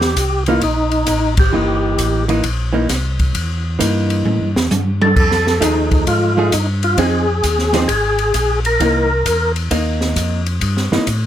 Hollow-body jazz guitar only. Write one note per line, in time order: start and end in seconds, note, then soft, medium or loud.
0.48 0.61 E3 medium
0.48 0.61 A#3 medium
0.48 0.62 D#4 medium
1.52 2.22 E3 medium
1.52 2.23 A#3 medium
1.52 2.23 D#4 medium
2.28 2.42 E3 medium
2.28 2.42 A#3 medium
2.28 2.43 D#4 medium
2.73 2.87 E3 medium
2.73 2.87 A#3 medium
2.73 2.88 D#4 medium
3.79 4.49 E3 medium
3.79 4.49 A#3 medium
3.79 4.49 D#4 medium
5.61 6.31 F3 medium
5.61 6.31 A3 medium
5.61 6.31 D#4 medium
5.61 6.31 G#4 medium
6.37 6.51 F3 medium
6.37 6.51 A3 medium
6.37 6.51 D#4 medium
6.37 6.52 G#4 medium
6.98 7.25 F3 medium
6.98 7.25 C4 medium
6.98 7.25 D#4 medium
6.98 7.26 G#4 medium
7.74 7.87 F3 medium
7.74 7.88 C4 medium
7.74 7.88 D#4 medium
7.74 7.88 G#4 medium
8.80 9.07 E3 medium
8.80 9.08 A#3 medium
8.80 9.08 D#4 medium
9.71 10.40 A#3 medium
9.71 10.40 D#4 medium
10.92 11.06 E3 medium
10.92 11.06 A#3 medium
10.92 11.06 D#4 medium